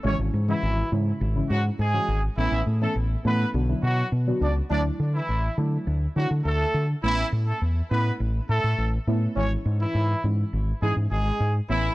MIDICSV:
0, 0, Header, 1, 4, 480
1, 0, Start_track
1, 0, Tempo, 582524
1, 36, Time_signature, 4, 2, 24, 8
1, 9844, End_track
2, 0, Start_track
2, 0, Title_t, "Horn section"
2, 0, Program_c, 0, 61
2, 34, Note_on_c, 0, 61, 110
2, 41, Note_on_c, 0, 73, 83
2, 134, Note_off_c, 0, 61, 0
2, 138, Note_off_c, 0, 73, 0
2, 395, Note_on_c, 0, 64, 82
2, 403, Note_on_c, 0, 52, 63
2, 734, Note_off_c, 0, 64, 0
2, 738, Note_off_c, 0, 52, 0
2, 1235, Note_on_c, 0, 66, 87
2, 1242, Note_on_c, 0, 54, 67
2, 1335, Note_off_c, 0, 66, 0
2, 1339, Note_off_c, 0, 54, 0
2, 1476, Note_on_c, 0, 68, 83
2, 1482, Note_on_c, 0, 56, 64
2, 1815, Note_off_c, 0, 68, 0
2, 1818, Note_off_c, 0, 56, 0
2, 1955, Note_on_c, 0, 64, 95
2, 1962, Note_on_c, 0, 52, 74
2, 2154, Note_off_c, 0, 64, 0
2, 2158, Note_off_c, 0, 52, 0
2, 2317, Note_on_c, 0, 69, 71
2, 2323, Note_on_c, 0, 57, 57
2, 2416, Note_off_c, 0, 69, 0
2, 2419, Note_off_c, 0, 57, 0
2, 2675, Note_on_c, 0, 71, 78
2, 2680, Note_on_c, 0, 59, 64
2, 2874, Note_off_c, 0, 71, 0
2, 2877, Note_off_c, 0, 59, 0
2, 3156, Note_on_c, 0, 66, 78
2, 3162, Note_on_c, 0, 54, 62
2, 3355, Note_off_c, 0, 66, 0
2, 3358, Note_off_c, 0, 54, 0
2, 3637, Note_on_c, 0, 62, 73
2, 3643, Note_on_c, 0, 74, 58
2, 3736, Note_off_c, 0, 62, 0
2, 3739, Note_off_c, 0, 74, 0
2, 3879, Note_on_c, 0, 62, 108
2, 3884, Note_on_c, 0, 74, 88
2, 3977, Note_off_c, 0, 62, 0
2, 3980, Note_off_c, 0, 74, 0
2, 4236, Note_on_c, 0, 64, 73
2, 4243, Note_on_c, 0, 52, 59
2, 4575, Note_off_c, 0, 64, 0
2, 4578, Note_off_c, 0, 52, 0
2, 5076, Note_on_c, 0, 66, 84
2, 5081, Note_on_c, 0, 54, 64
2, 5175, Note_off_c, 0, 66, 0
2, 5179, Note_off_c, 0, 54, 0
2, 5315, Note_on_c, 0, 69, 81
2, 5322, Note_on_c, 0, 57, 67
2, 5654, Note_off_c, 0, 69, 0
2, 5658, Note_off_c, 0, 57, 0
2, 5796, Note_on_c, 0, 64, 110
2, 5802, Note_on_c, 0, 52, 85
2, 5995, Note_off_c, 0, 64, 0
2, 5998, Note_off_c, 0, 52, 0
2, 6156, Note_on_c, 0, 69, 72
2, 6162, Note_on_c, 0, 57, 54
2, 6255, Note_off_c, 0, 69, 0
2, 6259, Note_off_c, 0, 57, 0
2, 6515, Note_on_c, 0, 71, 80
2, 6522, Note_on_c, 0, 59, 65
2, 6714, Note_off_c, 0, 71, 0
2, 6718, Note_off_c, 0, 59, 0
2, 6995, Note_on_c, 0, 69, 86
2, 7001, Note_on_c, 0, 57, 64
2, 7334, Note_off_c, 0, 69, 0
2, 7337, Note_off_c, 0, 57, 0
2, 7716, Note_on_c, 0, 61, 102
2, 7722, Note_on_c, 0, 73, 79
2, 7815, Note_off_c, 0, 61, 0
2, 7819, Note_off_c, 0, 73, 0
2, 8076, Note_on_c, 0, 64, 81
2, 8083, Note_on_c, 0, 52, 63
2, 8415, Note_off_c, 0, 64, 0
2, 8418, Note_off_c, 0, 52, 0
2, 8917, Note_on_c, 0, 68, 85
2, 8923, Note_on_c, 0, 56, 63
2, 9016, Note_off_c, 0, 68, 0
2, 9020, Note_off_c, 0, 56, 0
2, 9155, Note_on_c, 0, 68, 80
2, 9160, Note_on_c, 0, 56, 65
2, 9494, Note_off_c, 0, 68, 0
2, 9497, Note_off_c, 0, 56, 0
2, 9634, Note_on_c, 0, 64, 96
2, 9640, Note_on_c, 0, 52, 76
2, 9834, Note_off_c, 0, 64, 0
2, 9837, Note_off_c, 0, 52, 0
2, 9844, End_track
3, 0, Start_track
3, 0, Title_t, "Synth stab"
3, 0, Program_c, 1, 62
3, 34, Note_on_c, 1, 49, 81
3, 36, Note_on_c, 1, 52, 71
3, 36, Note_on_c, 1, 56, 73
3, 38, Note_on_c, 1, 61, 72
3, 38, Note_on_c, 1, 64, 88
3, 326, Note_off_c, 1, 49, 0
3, 327, Note_off_c, 1, 52, 0
3, 327, Note_off_c, 1, 56, 0
3, 327, Note_off_c, 1, 61, 0
3, 328, Note_off_c, 1, 64, 0
3, 396, Note_on_c, 1, 49, 80
3, 397, Note_on_c, 1, 52, 73
3, 397, Note_on_c, 1, 56, 72
3, 399, Note_on_c, 1, 61, 69
3, 400, Note_on_c, 1, 66, 84
3, 686, Note_off_c, 1, 49, 0
3, 687, Note_off_c, 1, 52, 0
3, 687, Note_off_c, 1, 56, 0
3, 688, Note_off_c, 1, 61, 0
3, 688, Note_off_c, 1, 66, 0
3, 755, Note_on_c, 1, 49, 75
3, 755, Note_on_c, 1, 52, 69
3, 758, Note_on_c, 1, 56, 67
3, 758, Note_on_c, 1, 61, 69
3, 759, Note_on_c, 1, 64, 84
3, 1046, Note_off_c, 1, 49, 0
3, 1046, Note_off_c, 1, 52, 0
3, 1047, Note_off_c, 1, 56, 0
3, 1048, Note_off_c, 1, 61, 0
3, 1048, Note_off_c, 1, 64, 0
3, 1115, Note_on_c, 1, 49, 80
3, 1117, Note_on_c, 1, 52, 70
3, 1117, Note_on_c, 1, 56, 72
3, 1118, Note_on_c, 1, 61, 72
3, 1120, Note_on_c, 1, 64, 82
3, 1503, Note_off_c, 1, 49, 0
3, 1503, Note_off_c, 1, 52, 0
3, 1504, Note_off_c, 1, 56, 0
3, 1504, Note_off_c, 1, 61, 0
3, 1505, Note_off_c, 1, 64, 0
3, 1595, Note_on_c, 1, 49, 75
3, 1596, Note_on_c, 1, 52, 69
3, 1597, Note_on_c, 1, 56, 71
3, 1598, Note_on_c, 1, 61, 71
3, 1599, Note_on_c, 1, 66, 86
3, 1886, Note_off_c, 1, 49, 0
3, 1887, Note_off_c, 1, 52, 0
3, 1887, Note_off_c, 1, 56, 0
3, 1888, Note_off_c, 1, 61, 0
3, 1888, Note_off_c, 1, 66, 0
3, 1956, Note_on_c, 1, 52, 83
3, 1958, Note_on_c, 1, 57, 74
3, 1959, Note_on_c, 1, 59, 74
3, 1959, Note_on_c, 1, 61, 74
3, 1962, Note_on_c, 1, 64, 90
3, 2247, Note_off_c, 1, 52, 0
3, 2248, Note_off_c, 1, 57, 0
3, 2248, Note_off_c, 1, 59, 0
3, 2248, Note_off_c, 1, 61, 0
3, 2249, Note_off_c, 1, 64, 0
3, 2316, Note_on_c, 1, 52, 77
3, 2316, Note_on_c, 1, 57, 70
3, 2317, Note_on_c, 1, 59, 71
3, 2318, Note_on_c, 1, 61, 73
3, 2319, Note_on_c, 1, 64, 85
3, 2606, Note_off_c, 1, 52, 0
3, 2606, Note_off_c, 1, 57, 0
3, 2607, Note_off_c, 1, 59, 0
3, 2608, Note_off_c, 1, 61, 0
3, 2608, Note_off_c, 1, 64, 0
3, 2676, Note_on_c, 1, 52, 72
3, 2676, Note_on_c, 1, 57, 73
3, 2677, Note_on_c, 1, 59, 69
3, 2678, Note_on_c, 1, 61, 73
3, 2679, Note_on_c, 1, 64, 84
3, 2907, Note_off_c, 1, 59, 0
3, 2914, Note_on_c, 1, 50, 81
3, 2916, Note_off_c, 1, 52, 0
3, 2916, Note_off_c, 1, 57, 0
3, 2916, Note_on_c, 1, 54, 73
3, 2917, Note_off_c, 1, 61, 0
3, 2917, Note_on_c, 1, 59, 75
3, 2918, Note_off_c, 1, 64, 0
3, 2919, Note_on_c, 1, 62, 76
3, 2919, Note_on_c, 1, 66, 91
3, 3012, Note_off_c, 1, 50, 0
3, 3013, Note_off_c, 1, 54, 0
3, 3013, Note_off_c, 1, 59, 0
3, 3014, Note_off_c, 1, 62, 0
3, 3014, Note_off_c, 1, 66, 0
3, 3038, Note_on_c, 1, 50, 76
3, 3039, Note_on_c, 1, 54, 72
3, 3041, Note_on_c, 1, 59, 71
3, 3041, Note_on_c, 1, 62, 73
3, 3042, Note_on_c, 1, 64, 85
3, 3424, Note_off_c, 1, 50, 0
3, 3425, Note_off_c, 1, 54, 0
3, 3426, Note_off_c, 1, 59, 0
3, 3426, Note_off_c, 1, 62, 0
3, 3426, Note_off_c, 1, 64, 0
3, 3518, Note_on_c, 1, 50, 79
3, 3518, Note_on_c, 1, 54, 71
3, 3519, Note_on_c, 1, 59, 74
3, 3520, Note_on_c, 1, 62, 72
3, 3522, Note_on_c, 1, 66, 83
3, 3807, Note_off_c, 1, 50, 0
3, 3808, Note_off_c, 1, 54, 0
3, 3808, Note_off_c, 1, 59, 0
3, 3809, Note_off_c, 1, 62, 0
3, 3809, Note_off_c, 1, 66, 0
3, 3877, Note_on_c, 1, 54, 79
3, 3878, Note_on_c, 1, 57, 73
3, 3880, Note_on_c, 1, 62, 72
3, 3881, Note_on_c, 1, 64, 89
3, 4458, Note_off_c, 1, 54, 0
3, 4458, Note_off_c, 1, 57, 0
3, 4459, Note_off_c, 1, 62, 0
3, 4459, Note_off_c, 1, 64, 0
3, 4597, Note_on_c, 1, 54, 77
3, 4597, Note_on_c, 1, 57, 70
3, 4598, Note_on_c, 1, 62, 69
3, 4601, Note_on_c, 1, 64, 85
3, 4983, Note_off_c, 1, 54, 0
3, 4984, Note_off_c, 1, 57, 0
3, 4984, Note_off_c, 1, 62, 0
3, 4986, Note_off_c, 1, 64, 0
3, 5075, Note_on_c, 1, 54, 79
3, 5075, Note_on_c, 1, 57, 74
3, 5077, Note_on_c, 1, 62, 70
3, 5078, Note_on_c, 1, 64, 86
3, 5656, Note_off_c, 1, 54, 0
3, 5656, Note_off_c, 1, 57, 0
3, 5657, Note_off_c, 1, 62, 0
3, 5658, Note_off_c, 1, 64, 0
3, 5795, Note_on_c, 1, 57, 81
3, 5796, Note_on_c, 1, 59, 74
3, 5797, Note_on_c, 1, 61, 74
3, 5799, Note_on_c, 1, 64, 88
3, 6376, Note_off_c, 1, 57, 0
3, 6377, Note_off_c, 1, 59, 0
3, 6377, Note_off_c, 1, 61, 0
3, 6378, Note_off_c, 1, 64, 0
3, 6515, Note_on_c, 1, 57, 72
3, 6516, Note_on_c, 1, 59, 67
3, 6518, Note_on_c, 1, 61, 71
3, 6519, Note_on_c, 1, 64, 86
3, 7290, Note_off_c, 1, 57, 0
3, 7291, Note_off_c, 1, 59, 0
3, 7291, Note_off_c, 1, 61, 0
3, 7292, Note_off_c, 1, 64, 0
3, 7475, Note_on_c, 1, 57, 99
3, 7476, Note_on_c, 1, 59, 87
3, 7477, Note_on_c, 1, 61, 91
3, 7479, Note_on_c, 1, 64, 106
3, 7669, Note_off_c, 1, 57, 0
3, 7670, Note_off_c, 1, 59, 0
3, 7670, Note_off_c, 1, 61, 0
3, 7671, Note_off_c, 1, 64, 0
3, 7716, Note_on_c, 1, 52, 79
3, 7717, Note_on_c, 1, 56, 75
3, 7718, Note_on_c, 1, 61, 72
3, 7720, Note_on_c, 1, 64, 91
3, 8297, Note_off_c, 1, 52, 0
3, 8297, Note_off_c, 1, 56, 0
3, 8298, Note_off_c, 1, 61, 0
3, 8299, Note_off_c, 1, 64, 0
3, 8435, Note_on_c, 1, 52, 72
3, 8436, Note_on_c, 1, 56, 70
3, 8437, Note_on_c, 1, 61, 69
3, 8439, Note_on_c, 1, 64, 85
3, 8823, Note_off_c, 1, 52, 0
3, 8823, Note_off_c, 1, 56, 0
3, 8824, Note_off_c, 1, 61, 0
3, 8825, Note_off_c, 1, 64, 0
3, 8913, Note_on_c, 1, 52, 82
3, 8915, Note_on_c, 1, 56, 71
3, 8916, Note_on_c, 1, 61, 69
3, 8917, Note_on_c, 1, 64, 85
3, 9495, Note_off_c, 1, 52, 0
3, 9496, Note_off_c, 1, 56, 0
3, 9497, Note_off_c, 1, 61, 0
3, 9497, Note_off_c, 1, 64, 0
3, 9633, Note_on_c, 1, 52, 82
3, 9634, Note_on_c, 1, 57, 73
3, 9635, Note_on_c, 1, 59, 73
3, 9636, Note_on_c, 1, 61, 85
3, 9844, Note_off_c, 1, 52, 0
3, 9844, Note_off_c, 1, 57, 0
3, 9844, Note_off_c, 1, 59, 0
3, 9844, Note_off_c, 1, 61, 0
3, 9844, End_track
4, 0, Start_track
4, 0, Title_t, "Fingered electric bass"
4, 0, Program_c, 2, 33
4, 36, Note_on_c, 2, 32, 112
4, 114, Note_off_c, 2, 32, 0
4, 156, Note_on_c, 2, 32, 97
4, 234, Note_off_c, 2, 32, 0
4, 276, Note_on_c, 2, 44, 105
4, 432, Note_off_c, 2, 44, 0
4, 517, Note_on_c, 2, 32, 96
4, 673, Note_off_c, 2, 32, 0
4, 758, Note_on_c, 2, 44, 105
4, 913, Note_off_c, 2, 44, 0
4, 996, Note_on_c, 2, 32, 114
4, 1152, Note_off_c, 2, 32, 0
4, 1237, Note_on_c, 2, 44, 106
4, 1392, Note_off_c, 2, 44, 0
4, 1475, Note_on_c, 2, 44, 100
4, 1631, Note_off_c, 2, 44, 0
4, 1715, Note_on_c, 2, 32, 95
4, 1872, Note_off_c, 2, 32, 0
4, 1955, Note_on_c, 2, 33, 101
4, 2033, Note_off_c, 2, 33, 0
4, 2074, Note_on_c, 2, 33, 101
4, 2153, Note_off_c, 2, 33, 0
4, 2195, Note_on_c, 2, 45, 100
4, 2352, Note_off_c, 2, 45, 0
4, 2435, Note_on_c, 2, 33, 98
4, 2592, Note_off_c, 2, 33, 0
4, 2676, Note_on_c, 2, 45, 108
4, 2832, Note_off_c, 2, 45, 0
4, 2916, Note_on_c, 2, 35, 109
4, 3072, Note_off_c, 2, 35, 0
4, 3154, Note_on_c, 2, 47, 101
4, 3311, Note_off_c, 2, 47, 0
4, 3395, Note_on_c, 2, 47, 99
4, 3552, Note_off_c, 2, 47, 0
4, 3635, Note_on_c, 2, 37, 95
4, 3791, Note_off_c, 2, 37, 0
4, 3875, Note_on_c, 2, 38, 106
4, 4032, Note_off_c, 2, 38, 0
4, 4117, Note_on_c, 2, 50, 100
4, 4273, Note_off_c, 2, 50, 0
4, 4356, Note_on_c, 2, 33, 88
4, 4512, Note_off_c, 2, 33, 0
4, 4595, Note_on_c, 2, 50, 100
4, 4752, Note_off_c, 2, 50, 0
4, 4836, Note_on_c, 2, 38, 98
4, 4992, Note_off_c, 2, 38, 0
4, 5076, Note_on_c, 2, 50, 98
4, 5154, Note_off_c, 2, 50, 0
4, 5197, Note_on_c, 2, 50, 94
4, 5275, Note_off_c, 2, 50, 0
4, 5316, Note_on_c, 2, 38, 102
4, 5472, Note_off_c, 2, 38, 0
4, 5555, Note_on_c, 2, 50, 104
4, 5712, Note_off_c, 2, 50, 0
4, 5796, Note_on_c, 2, 33, 103
4, 5952, Note_off_c, 2, 33, 0
4, 6035, Note_on_c, 2, 45, 104
4, 6192, Note_off_c, 2, 45, 0
4, 6275, Note_on_c, 2, 40, 93
4, 6432, Note_off_c, 2, 40, 0
4, 6518, Note_on_c, 2, 45, 98
4, 6673, Note_off_c, 2, 45, 0
4, 6756, Note_on_c, 2, 33, 106
4, 6912, Note_off_c, 2, 33, 0
4, 6996, Note_on_c, 2, 45, 102
4, 7074, Note_off_c, 2, 45, 0
4, 7118, Note_on_c, 2, 45, 93
4, 7195, Note_off_c, 2, 45, 0
4, 7236, Note_on_c, 2, 33, 110
4, 7392, Note_off_c, 2, 33, 0
4, 7476, Note_on_c, 2, 45, 105
4, 7632, Note_off_c, 2, 45, 0
4, 7715, Note_on_c, 2, 32, 100
4, 7871, Note_off_c, 2, 32, 0
4, 7956, Note_on_c, 2, 44, 107
4, 8112, Note_off_c, 2, 44, 0
4, 8195, Note_on_c, 2, 44, 96
4, 8352, Note_off_c, 2, 44, 0
4, 8436, Note_on_c, 2, 44, 102
4, 8592, Note_off_c, 2, 44, 0
4, 8677, Note_on_c, 2, 32, 102
4, 8833, Note_off_c, 2, 32, 0
4, 8916, Note_on_c, 2, 44, 108
4, 8994, Note_off_c, 2, 44, 0
4, 9035, Note_on_c, 2, 44, 97
4, 9113, Note_off_c, 2, 44, 0
4, 9155, Note_on_c, 2, 32, 109
4, 9312, Note_off_c, 2, 32, 0
4, 9395, Note_on_c, 2, 44, 98
4, 9552, Note_off_c, 2, 44, 0
4, 9636, Note_on_c, 2, 33, 103
4, 9792, Note_off_c, 2, 33, 0
4, 9844, End_track
0, 0, End_of_file